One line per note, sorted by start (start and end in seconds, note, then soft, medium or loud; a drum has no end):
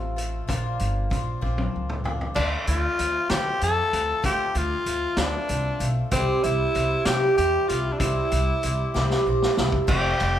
0.00 0.40 A1 medium
0.00 0.17 F2 medium
0.00 0.17 C3 medium
0.00 0.18 F3 medium
0.00 0.17 A3 medium
0.00 0.17 C4 medium
0.00 0.16 F4 medium
0.16 0.47 F3 soft
0.16 0.48 A3 medium
0.16 0.47 C4 medium
0.16 0.48 F4 medium
0.16 closed hi-hat medium
0.48 0.76 A#1 medium
0.48 1.11 A#2 medium
0.48 1.09 F3 medium
0.48 1.10 C4 medium
0.48 1.10 D4 loud
0.48 1.12 F4 loud
0.48 kick medium
0.48 closed hi-hat medium
0.79 1.07 G1 medium
0.79 closed hi-hat medium
1.10 1.38 A#1 medium
1.10 1.41 F3 medium
1.10 1.41 C4 medium
1.10 1.40 D4 medium
1.10 1.40 F4 medium
1.10 kick medium
1.10 closed hi-hat medium
1.41 1.69 A#1 medium
1.41 2.05 A#2 medium
1.41 2.05 F3 medium
1.41 2.05 C4 medium
1.41 2.04 D4 medium
1.41 2.03 F4 medium
1.41 kick soft
1.58 high tom medium
1.76 2.29 C#2 medium
1.89 mid tom medium
2.04 2.34 C4 soft
2.04 2.35 D4 medium
2.04 2.35 F4 medium
2.04 floor tom medium
2.21 floor tom medium
2.34 2.55 D2 medium
2.34 2.67 D3 medium
2.34 2.67 F3 medium
2.34 2.67 A3 medium
2.34 2.66 C4 medium
2.34 2.50 D4 medium
2.34 2.64 F4 medium
2.34 kick loud
2.34 crash loud
2.66 2.86 D2 loud
2.66 2.97 A3 soft
2.66 2.98 C4 soft
2.66 2.98 F4 soft
2.66 3.31 F4 medium
2.66 closed hi-hat medium
2.98 3.18 D2 medium
2.98 3.30 F3 medium
2.98 3.29 A3 medium
2.98 3.29 C4 medium
2.98 3.28 F4 medium
2.98 closed hi-hat medium
3.29 3.49 D3 medium
3.29 3.62 D3 medium
3.29 3.59 F3 medium
3.29 3.60 A3 medium
3.29 3.61 C4 medium
3.29 3.61 F4 medium
3.29 3.61 G4 loud
3.29 snare loud
3.29 closed hi-hat medium
3.60 3.81 F2 medium
3.60 3.92 F3 medium
3.60 3.93 A3 medium
3.60 3.92 C4 medium
3.60 3.90 F4 medium
3.60 4.21 A4 loud
3.60 closed hi-hat medium
3.92 4.12 D2 medium
3.92 4.23 A3 soft
3.92 4.23 C4 medium
3.92 4.24 F4 soft
3.92 closed hi-hat medium
4.22 4.43 D2 medium
4.22 4.55 D3 medium
4.22 4.55 F3 medium
4.22 4.55 A3 medium
4.22 4.54 C4 medium
4.22 4.53 F4 loud
4.22 4.59 G4 loud
4.22 kick loud
4.22 closed hi-hat medium
4.54 4.74 D2 loud
4.54 4.86 A3 soft
4.54 4.86 C4 soft
4.54 4.86 F4 medium
4.54 5.20 F4 medium
4.54 closed hi-hat medium
4.86 5.05 D2 medium
4.86 5.17 F3 medium
4.86 5.17 A3 medium
4.86 5.16 C4 medium
4.86 5.16 F4 medium
4.86 closed hi-hat medium
5.17 5.36 D2 medium
5.17 5.50 D3 medium
5.17 5.47 F3 medium
5.17 5.48 A3 medium
5.17 5.49 C4 medium
5.17 5.89 D4 medium
5.17 5.49 F4 medium
5.17 snare loud
5.17 closed hi-hat medium
5.48 5.68 C2 medium
5.48 5.80 F3 medium
5.48 5.81 A3 medium
5.48 5.80 C4 medium
5.48 5.78 F4 medium
5.48 closed hi-hat medium
5.79 5.99 B1 medium
5.79 6.12 A3 soft
5.79 6.11 C4 soft
5.79 6.11 F4 medium
5.79 closed hi-hat medium
6.11 6.31 C2 medium
6.11 6.43 C3 medium
6.11 6.43 G3 medium
6.11 6.44 C4 medium
6.11 6.45 C4 medium
6.11 6.43 E4 medium
6.11 6.42 G4 loud
6.11 kick loud
6.11 closed hi-hat loud
6.43 6.63 C2 loud
6.43 6.73 C4 soft
6.43 7.07 E4 loud
6.43 6.74 E4 soft
6.43 6.75 G4 soft
6.43 closed hi-hat medium
6.74 6.94 C2 medium
6.74 7.06 G3 medium
6.74 7.05 C4 medium
6.74 7.05 E4 medium
6.74 7.04 G4 medium
6.74 closed hi-hat medium
7.05 7.25 C3 medium
7.05 7.38 C3 medium
7.05 7.35 G3 medium
7.05 7.35 C4 medium
7.05 7.37 E4 medium
7.05 7.37 G4 medium
7.05 snare loud
7.05 closed hi-hat loud
7.36 7.57 E2 medium
7.36 7.68 G3 medium
7.36 7.68 C4 medium
7.36 7.68 E4 medium
7.36 7.70 G4 loud
7.36 7.67 G4 medium
7.36 closed hi-hat medium
7.68 7.89 C2 medium
7.68 8.00 C4 soft
7.68 8.00 E4 medium
7.68 7.94 F4 medium
7.68 8.00 G4 medium
7.68 closed hi-hat medium
7.92 8.00 D4 medium
7.99 8.19 C2 medium
7.99 8.31 C3 medium
7.99 8.32 G3 medium
7.99 8.32 C4 medium
7.99 9.25 E4 medium
7.99 8.31 E4 medium
7.99 8.29 G4 medium
7.99 kick loud
7.99 closed hi-hat loud
8.31 8.51 C2 medium
8.31 8.61 C4 soft
8.31 8.62 E4 soft
8.31 8.62 G4 medium
8.31 closed hi-hat medium
8.62 8.83 C2 medium
8.62 8.94 G3 medium
8.62 8.94 C4 medium
8.62 8.93 E4 medium
8.62 8.93 G4 medium
8.62 closed hi-hat medium
8.94 9.14 C2 medium
8.94 9.26 C3 medium
8.94 9.24 G3 medium
8.94 9.25 C4 medium
8.94 9.26 E4 medium
8.94 9.25 G4 medium
8.94 snare medium
9.10 snare medium
9.26 9.45 A#1 medium
9.26 9.57 G3 medium
9.26 9.57 C4 medium
9.26 9.56 E4 medium
9.26 9.54 G4 medium
9.42 snare medium
9.56 9.77 C2 medium
9.56 9.87 C4 medium
9.56 9.88 E4 medium
9.56 9.87 G4 medium
9.56 snare loud
9.72 kick medium
9.87 10.13 F1 medium
9.87 10.19 F2 medium
9.87 10.19 C3 medium
9.87 10.19 F3 medium
9.87 10.19 A3 loud
9.87 10.18 C4 medium
9.87 10.18 F4 loud
9.87 10.39 G4 loud
9.87 kick loud
9.87 crash loud
10.19 10.39 F1 loud
10.19 10.39 F3 soft
10.19 10.39 A3 soft
10.19 10.39 C4 medium
10.19 10.39 F4 soft
10.19 ride medium